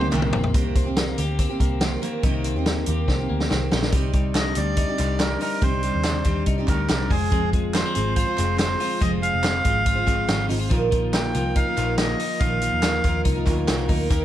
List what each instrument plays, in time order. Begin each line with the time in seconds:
Already playing: steel-string acoustic guitar C3 A#3 C4 G4, string section C3 A#3 D#4, clean electric guitar D#3 A#3 C4 G4
0.01 high tom
0.11 picked electric bass C2, steel-string acoustic guitar D#3 A#3 C4 G4, clean electric guitar A#3, clap, mid tom
0.22 mid tom
0.33 picked electric bass A#1, clean electric guitar C4, floor tom
0.44 floor tom
0.54 picked electric bass C2, steel-string acoustic guitar C3 D#3 A#3 C4 G4, kick, closed hi-hat
0.75 clean electric guitar C4, kick, closed hi-hat
0.85 steel-string acoustic guitar A#3 C4 G4
0.96 clean electric guitar A#3, snare, closed hi-hat
1.18 picked electric bass D2, steel-string acoustic guitar A#3 C4 G4, clean electric guitar G4, closed hi-hat
1.39 clean electric guitar C4, kick, closed hi-hat
1.49 steel-string acoustic guitar A#3 C4 G4
1.60 picked electric bass C2, clean electric guitar A#3, kick, closed hi-hat
1.80 steel-string acoustic guitar D#3 A#3 C4 G4, clean electric guitar C4, snare, closed hi-hat
2.02 steel-string acoustic guitar D#3 A#3 C4 G4, clean electric guitar A#3, closed hi-hat
2.23 picked electric bass C2, steel-string acoustic guitar C3 D#3 A#3 C4 G4, clean electric guitar D#3, kick, closed hi-hat
2.44 clean electric guitar C4, closed hi-hat
2.56 picked electric bass D#2, steel-string acoustic guitar A#3 C4 G4
2.66 clean electric guitar A#3, snare, closed hi-hat
2.86 picked electric bass D#2, steel-string acoustic guitar D#3 A#3 C4 G4, clean electric guitar G4, closed hi-hat
3.08 picked electric bass C2, clean electric guitar C4, kick, snare
3.19 steel-string acoustic guitar A#3 C4 G4
3.29 picked electric bass D2, clean electric guitar A#3
3.40 snare
3.50 picked electric bass C2, steel-string acoustic guitar D#3 A#3 C4 G4, clean electric guitar C4, snare
3.71 picked electric bass A#1, steel-string acoustic guitar D#3 A#3 C4 G4, clean electric guitar A#3, snare
3.82 snare
3.92 picked electric bass C2, steel-string acoustic guitar C3 G3 C4 D#4 G4 D5, clean electric guitar G3, kick, closed hi-hat
4.13 clean electric guitar G3, kick, closed hi-hat
4.35 clean electric guitar D4, melodica D#5, snare, clap, closed hi-hat
4.55 picked electric bass D2, clean electric guitar G3, steel-string acoustic guitar C4 D#4 G4 D5, melodica D5, closed hi-hat
4.77 clean electric guitar D#4, kick, closed hi-hat
4.88 steel-string acoustic guitar C4 D#4 G4 D5
4.98 picked electric bass C2, clean electric guitar G3, steel-string acoustic guitar C4 D#4 G4 D5, clap, closed hi-hat
5.18 steel-string acoustic guitar C4 D#4 G4 D5, clean electric guitar D4, melodica A#4, snare, clap, closed hi-hat
5.40 steel-string acoustic guitar C4 D#4 G4 D5, clean electric guitar D#4, melodica A#4, open hi-hat
5.61 picked electric bass C2, steel-string acoustic guitar C3 G3 C4 D#4 G4 D5, clean electric guitar G3, melodica C5, kick, closed hi-hat
5.83 clean electric guitar G3, closed hi-hat
5.95 picked electric bass D#2
6.04 clean electric guitar D4, snare, clap, closed hi-hat
6.24 picked electric bass D#2, clean electric guitar G3, steel-string acoustic guitar C4 D#4 G4 D5, kick, closed hi-hat
6.46 picked electric bass C2, clean electric guitar D#4, kick, closed hi-hat
6.58 steel-string acoustic guitar C4 D#4 G4 D5
6.68 picked electric bass D2, clean electric guitar G3, steel-string acoustic guitar C4 D#4 G4 D5, melodica A#4, kick, clap, closed hi-hat
6.89 picked electric bass C2, steel-string acoustic guitar C4 D#4 G4 D5, clean electric guitar D4, melodica A#4, snare, clap, closed hi-hat
7.10 picked electric bass F1, clean electric guitar G#3, steel-string acoustic guitar C4 F4 G#4 C5, melodica G#4, kick, open hi-hat
7.31 steel-string acoustic guitar F3 C4 F4 G#4 C5, clean electric guitar G#3, kick, closed hi-hat
7.53 clean electric guitar G#3, kick, closed hi-hat
7.74 clean electric guitar A#3, melodica C5, snare, clap, closed hi-hat
7.86 clean electric guitar C4
7.95 picked electric bass G#1, clean electric guitar G#3, steel-string acoustic guitar C4 F4 G#4 C5, closed hi-hat
8.16 clean electric guitar F4, melodica C5, kick, closed hi-hat
8.27 steel-string acoustic guitar F4 G#4 C5
8.37 picked electric bass F1, clean electric guitar G#3, steel-string acoustic guitar C4 F4 G#4 C5, clap, closed hi-hat
8.57 steel-string acoustic guitar C4 F4 G#4 C5, clean electric guitar C4, melodica C5, snare, clap, closed hi-hat
8.79 steel-string acoustic guitar C4 F4 G#4 C5, clean electric guitar F4, open hi-hat
9.00 picked electric bass F1, steel-string acoustic guitar F3 C4 F4 G#4 C5, clean electric guitar G#3, melodica D#5, kick, closed hi-hat
9.22 clean electric guitar G#3, melodica F5, closed hi-hat
9.33 picked electric bass F1
9.43 clean electric guitar C4, snare, clap, closed hi-hat
9.64 picked electric bass G#1, clean electric guitar G#3, steel-string acoustic guitar C4 F4 G#4 C5, kick, closed hi-hat
9.86 clean electric guitar F4, kick, closed hi-hat
9.95 steel-string acoustic guitar F4 G#4 C5
10.06 clean electric guitar G#3, steel-string acoustic guitar C4 F4 G#4 C5, kick, clap, closed hi-hat
10.27 picked electric bass G#1, steel-string acoustic guitar C4 F4 G#4 C5, clean electric guitar C4, snare, clap, closed hi-hat
10.49 picked electric bass G#1, steel-string acoustic guitar C4 F4 G#4 C5, clean electric guitar D#4, open hi-hat
10.59 clean electric guitar F4
10.70 picked electric bass A#1, steel-string acoustic guitar A#2 D#3 A#3 D#4 F4 A#4, clean electric guitar F3, kick, closed hi-hat
10.91 clean electric guitar F3, kick, closed hi-hat
11.13 clean electric guitar A#3, melodica G5, snare, clap, closed hi-hat
11.33 picked electric bass C2, clean electric guitar F3, steel-string acoustic guitar A#3 D#4 F4 A#4, closed hi-hat
11.56 clean electric guitar D#4, melodica F5, kick, closed hi-hat
11.67 steel-string acoustic guitar A#3 D#4 F4 A#4
11.77 picked electric bass A#1, clean electric guitar F3, steel-string acoustic guitar A#3 D#4 F4 A#4, clap, closed hi-hat
11.98 steel-string acoustic guitar A#3 D#4 F4 A#4, clean electric guitar A#3, melodica D#5, snare, clap, closed hi-hat
12.19 steel-string acoustic guitar A#3 D#4 F4 A#4, clean electric guitar D#4, open hi-hat
12.40 picked electric bass A#1, steel-string acoustic guitar A#2 D#3 A#3 D#4 F4 A#4, clean electric guitar F3, melodica F5, kick, closed hi-hat
12.62 clean electric guitar F3, closed hi-hat
12.73 picked electric bass D#2
12.83 clean electric guitar A#3, snare, clap, closed hi-hat
13.04 picked electric bass D#2, clean electric guitar F3, steel-string acoustic guitar A#3 D#4 F4 A#4, kick, closed hi-hat
13.25 picked electric bass C2, clean electric guitar D#4, kick, closed hi-hat
13.35 steel-string acoustic guitar A#3 D#4 F4 A#4
13.46 picked electric bass D2, clean electric guitar F3, steel-string acoustic guitar A#3 D#4 F4 A#4, kick, clap, closed hi-hat
13.68 picked electric bass C2, steel-string acoustic guitar A#3 D#4 F4 A#4, clean electric guitar A#3, snare, clap, closed hi-hat
13.88 picked electric bass D2, steel-string acoustic guitar A#3 D#4 F4 A#4, clean electric guitar D#4, kick, open hi-hat
14.10 picked electric bass D#2, steel-string acoustic guitar D#3 A#3 D#4 G4 A#4, clean electric guitar A#3, kick, closed hi-hat